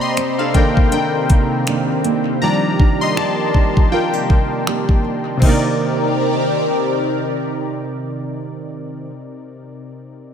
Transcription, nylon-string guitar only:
Already playing: C3 A#3 D4 G4
0.17 C4
0.39 D4
0.55 A#3
0.92 D4
1.30 D#3
1.67 D#3 A#3 D4
2.05 A#3
2.42 D#3
2.79 D4
3.17 G4
3.54 D4
3.92 F4
4.13 G4
4.29 A#3
4.67 A#3 D4 G4
5.04 D4
5.39 C3 D#3
5.45 A#3 D4

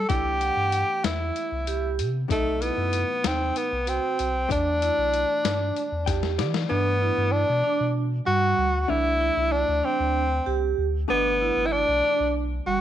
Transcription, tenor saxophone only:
0.09 G4
1.04 E4
2.32 A3
2.62 B3
3.27 C4
3.57 B3
3.89 C4
4.52 D4
6.70 B3
7.32 D4
8.27 F#4
8.81 F#4
8.90 E4
9.52 D4
9.85 C4
11.10 B3
11.66 E4
11.72 D4
12.66 F#4

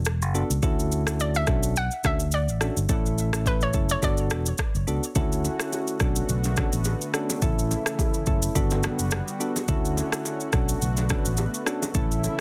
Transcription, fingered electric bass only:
Already playing: E1
0.22 F#1
0.50 C#2
0.63 D2
1.48 B1
2.05 D2
2.48 A1
2.77 G1
2.89 A1
3.74 F#1
4.03 G1
4.31 E1
4.75 F#1
4.87 C#2
5.16 D2
6.01 B1
6.29 B1
6.73 A1
7.42 A1
8.27 F#1
8.55 G1
8.99 F#1
9.69 D2
10.53 B1
10.82 B1
11.26 A1
11.95 A1

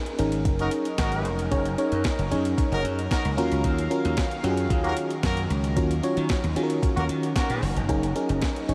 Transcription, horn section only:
0.59 D#4 F#4 A#4
0.99 D#4 F#4 A#4
2.72 D#4 F#4 A#4
3.11 D#4 F#4 A#4
4.84 A#3 F#4 A#4
5.24 A#3 F#4 A#4
6.96 A#3 F#4 A#4
7.36 A#3 F#4 A#4

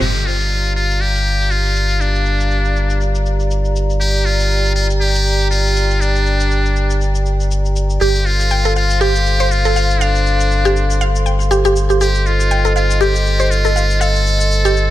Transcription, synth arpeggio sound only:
8.01 G4
8.51 G5
8.65 A4
8.76 F5
9.01 G4
9.40 C5
9.65 A4
9.76 F5
10.01 F5
10.65 G4
11.01 F5
11.26 G5
11.51 G4
11.65 G4
11.90 G4
12.01 G4
12.51 G5
12.65 A4
12.76 F5
13.01 G4
13.40 C5
13.65 A4
13.76 F5
14.01 F5
14.65 G4

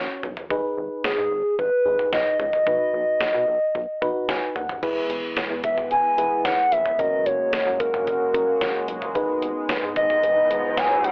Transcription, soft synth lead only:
1.05 G#4
1.59 B4
2.13 D#5
2.40 D#5
5.64 E5
5.91 G#5
6.45 F#5
6.72 E5
6.99 D#5
7.26 C#5
7.80 A#4
9.96 D#5
10.77 G#5
11.05 F#5

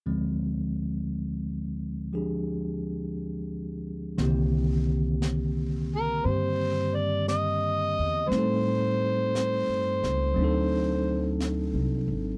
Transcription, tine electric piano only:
0.06 D2 D3 F3 G#3 C4
2.13 F3 D4 G4 G#4
4.18 D3 D#3 A#3 C4
4.22 G4
6.26 C4 G4
8.28 G3 A3
8.33 C4 D#4
8.39 A4
10.34 F#3 C4
10.39 D4 D#4
10.44 A4

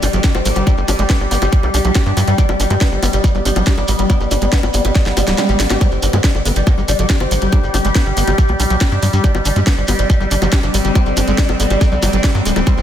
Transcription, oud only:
0.03 G3
0.13 D3
0.24 D3
0.35 C4
0.45 D3
0.56 D3
0.67 D4
0.78 G3
0.88 G3
0.99 G3
1.10 B3
1.20 G3
1.31 G3
1.42 G3
1.63 G3
1.74 G3
1.85 G3
1.95 G3
2.06 D4
2.17 G3
2.28 G3
2.38 D4
2.49 G3
2.60 G3
2.70 G3
2.81 B3
2.92 G3
3.03 G3
3.13 G3
3.24 G3
3.35 G3
3.45 G3
3.56 G3
3.67 G3
3.78 D4
3.88 G3
3.99 G3
4.10 D4
4.20 G3
4.31 G3
4.42 G3
4.53 B3
4.63 G3
4.74 G3
4.85 G3
4.95 G3
5.06 G3
5.17 G3
5.28 G3
5.38 G3
5.49 G3
5.60 G3
5.70 G3
5.81 C4
5.92 D3
6.03 D3
6.13 D3
6.24 G3
6.35 D3
6.45 D3
6.56 G3
6.67 D3
6.78 D3
6.88 G3
6.99 D3
7.20 C4
7.31 D3
7.42 D3
7.53 D4
7.63 G3
7.74 G3
7.85 G3
7.95 B3
8.06 G3
8.17 G3
8.28 G3
8.38 G3
8.49 G3
8.60 G3
8.70 G3
8.81 G3
8.92 D4
9.03 G3
9.13 G3
9.24 D4
9.35 G3
9.45 G3
9.56 G3
9.67 B3
9.78 G3
9.88 G3
9.99 G3
10.20 G3
10.31 G3
10.42 G3
10.53 G3
10.63 D4
10.74 G3
10.85 G3
10.95 C4
11.06 D3
11.17 D3
11.28 D3
11.38 G3
11.49 D3
11.60 D3
11.70 G3
11.92 D3
12.03 F#3
12.13 D3
12.24 D3
12.35 F#3
12.45 D3
12.56 D3
12.67 C4
12.78 D3

